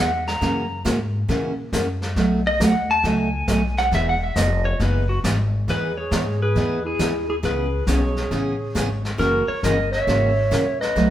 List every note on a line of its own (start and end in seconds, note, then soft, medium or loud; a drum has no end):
0.00 0.40 E2 medium
0.00 0.27 F#5 medium
0.27 0.82 A#5 medium
0.27 snare soft
0.41 0.84 F#2 medium
0.41 0.64 C#3 medium
0.41 0.64 E3 medium
0.41 0.64 A#3 medium
0.41 0.64 C#4 medium
0.41 0.64 F#4 medium
0.41 brush sweep soft
0.41 kick soft
0.41 snare soft
0.85 1.28 G#2 loud
0.85 0.97 C#3 medium
0.85 0.97 E3 medium
0.85 0.97 A#3 medium
0.85 0.97 C#4 medium
0.85 0.98 F#4 medium
0.85 kick soft
0.85 snare medium
0.85 hi-hat pedal medium
1.28 1.72 A#2 medium
1.28 1.51 C#3 medium
1.28 1.52 E3 medium
1.28 1.52 A#3 medium
1.28 1.52 C#4 medium
1.28 1.52 F#4 medium
1.28 brush sweep soft
1.28 kick soft
1.28 snare soft
1.72 2.15 F#2 medium
1.72 1.85 C#3 medium
1.72 1.85 E3 medium
1.72 1.85 A#3 medium
1.72 1.85 C#4 medium
1.72 1.85 F#4 medium
1.72 kick soft
1.72 snare medium
1.72 hi-hat pedal medium
2.02 snare soft
2.16 2.59 B1 medium
2.16 2.39 B2 medium
2.16 2.40 F#3 medium
2.16 2.40 A3 medium
2.16 2.40 D#4 medium
2.16 2.40 F#4 medium
2.16 brush sweep soft
2.16 kick soft
2.16 snare soft
2.47 2.61 D#5 medium
2.60 3.03 D#2 medium
2.60 2.73 B2 medium
2.60 2.73 F#3 medium
2.60 2.73 A3 medium
2.60 2.73 D#4 medium
2.60 2.73 F#4 medium
2.60 2.90 F#5 medium
2.60 kick soft
2.60 snare medium
2.60 hi-hat pedal medium
2.91 3.05 A5 loud
3.03 3.47 C#2 medium
3.03 3.27 B2 medium
3.03 3.27 F#3 medium
3.03 3.27 A3 medium
3.03 3.28 D#4 medium
3.03 3.28 F#4 medium
3.03 3.75 G#5 medium
3.03 brush sweep soft
3.03 kick soft
3.03 snare soft
3.48 3.91 B1 medium
3.48 3.60 B2 medium
3.48 3.60 F#3 medium
3.48 3.61 A3 medium
3.48 3.61 D#4 medium
3.48 3.61 F#4 medium
3.48 kick soft
3.48 snare medium
3.48 hi-hat pedal medium
3.77 3.92 F#5 loud
3.77 snare soft
3.92 4.35 E1 medium
3.92 4.15 E3 medium
3.92 4.15 B3 medium
3.92 4.15 D#4 medium
3.92 4.15 G#4 medium
3.92 4.08 E5 loud
3.92 brush sweep medium
3.92 kick soft
3.92 snare soft
4.09 4.22 F#5 loud
4.23 4.38 E5 medium
4.36 4.79 F1 loud
4.36 4.49 E3 medium
4.36 4.49 B3 medium
4.36 4.49 D#4 medium
4.36 4.49 G#4 medium
4.36 4.65 D#5 medium
4.36 kick soft
4.36 snare medium
4.36 hi-hat pedal medium
4.65 4.80 C#5 medium
4.80 5.22 F#1 loud
4.80 5.03 E3 medium
4.80 5.03 B3 medium
4.80 5.03 D#4 medium
4.80 5.03 G#4 medium
4.80 5.09 B4 medium
4.80 brush sweep medium
4.80 kick soft
4.80 snare soft
5.09 5.18 F#4 medium
5.24 5.66 G#1 medium
5.24 5.36 E3 medium
5.24 5.36 B3 medium
5.24 5.36 D#4 medium
5.24 5.36 G#4 medium
5.24 kick soft
5.24 snare medium
5.24 hi-hat pedal medium
5.68 6.10 E2 medium
5.68 5.90 E3 medium
5.68 5.91 B3 medium
5.68 5.91 D#4 medium
5.68 5.95 G#4 medium
5.68 5.91 G#4 medium
5.68 5.97 B4 loud
5.68 brush sweep medium
5.68 kick soft
5.68 snare soft
5.97 6.39 G#4 medium
5.97 6.42 C#5 loud
6.11 6.54 G#2 loud
6.11 6.24 E3 medium
6.11 6.24 B3 medium
6.11 6.24 D#4 medium
6.11 6.24 G#4 medium
6.11 kick soft
6.11 snare medium
6.11 hi-hat pedal medium
6.42 6.83 G#4 loud
6.42 6.87 B4 loud
6.55 6.98 E2 medium
6.55 6.78 E3 medium
6.55 6.79 B3 medium
6.55 6.79 D#4 medium
6.55 6.79 G#4 medium
6.55 brush sweep medium
6.55 kick soft
6.55 snare soft
6.85 7.26 E4 medium
6.85 7.29 G#4 medium
6.99 7.42 D#2 medium
6.99 7.11 E3 medium
6.99 7.12 B3 medium
6.99 7.12 D#4 medium
6.99 7.12 G#4 medium
6.99 kick soft
6.99 snare medium
6.99 hi-hat pedal medium
7.28 7.35 E4 medium
7.28 7.35 G#4 medium
7.42 7.86 C#2 medium
7.42 7.66 C#3 medium
7.42 7.66 E3 medium
7.42 7.66 B3 medium
7.42 7.66 C#4 medium
7.42 7.84 G#4 medium
7.42 7.66 G#4 medium
7.42 7.88 B4 loud
7.42 brush sweep soft
7.42 kick soft
7.42 snare soft
7.86 8.30 B1 loud
7.86 8.00 C#3 medium
7.86 8.00 E3 medium
7.86 8.00 B3 medium
7.86 8.00 C#4 medium
7.86 9.00 G#4 medium
7.86 8.00 G#4 medium
7.86 9.01 C#5 medium
7.86 kick soft
7.86 snare medium
7.86 hi-hat pedal medium
8.16 snare soft
8.31 8.74 A1 loud
8.31 8.54 C#3 medium
8.31 8.54 E3 medium
8.31 8.54 B3 medium
8.31 8.55 C#4 medium
8.31 8.55 G#4 medium
8.31 brush sweep soft
8.31 kick soft
8.31 snare soft
8.75 9.18 G#1 medium
8.75 8.87 C#3 medium
8.75 8.87 E3 medium
8.75 8.88 B3 medium
8.75 8.88 C#4 medium
8.75 8.88 G#4 medium
8.75 kick soft
8.75 snare medium
8.75 hi-hat pedal medium
9.05 snare soft
9.18 9.46 F#1 medium
9.18 9.41 C#3 medium
9.18 9.42 E3 medium
9.18 9.42 A#3 medium
9.18 9.42 C#4 medium
9.18 9.46 F#4 medium
9.18 9.42 F#4 medium
9.18 9.50 A#4 loud
9.18 brush sweep soft
9.18 kick soft
9.18 snare soft
9.47 9.61 A#4 medium
9.47 9.64 C#5 loud
9.47 muted upright bass stroke soft
9.62 10.06 G1 loud
9.62 9.76 C#3 medium
9.62 9.76 E3 medium
9.62 9.76 A#3 medium
9.62 9.76 C#4 medium
9.62 9.76 F#4 medium
9.62 9.90 A#4 medium
9.62 9.92 D#5 loud
9.62 kick soft
9.62 snare medium
9.62 hi-hat pedal medium
9.91 10.76 C#5 loud
9.91 10.81 E5 loud
9.91 snare soft
10.07 10.50 G#1 medium
10.07 10.30 C#3 medium
10.07 10.30 E3 medium
10.07 10.30 A#3 medium
10.07 10.30 C#4 medium
10.07 10.31 F#4 medium
10.07 brush sweep medium
10.07 kick soft
10.07 snare soft
10.51 10.94 A#1 medium
10.51 10.63 C#3 medium
10.51 10.63 E3 medium
10.51 10.64 A#3 medium
10.51 10.64 C#4 medium
10.51 10.64 F#4 medium
10.51 kick soft
10.51 snare medium
10.51 hi-hat pedal medium
10.80 11.10 B4 medium
10.80 11.10 D#5 loud
10.80 snare soft
10.96 11.10 B1 medium
10.96 11.10 B2 medium
10.96 11.10 F#3 medium
10.96 11.10 A3 medium
10.96 11.10 D#4 medium
10.96 11.10 F#4 medium
10.96 brush sweep soft
10.96 kick soft
10.96 snare soft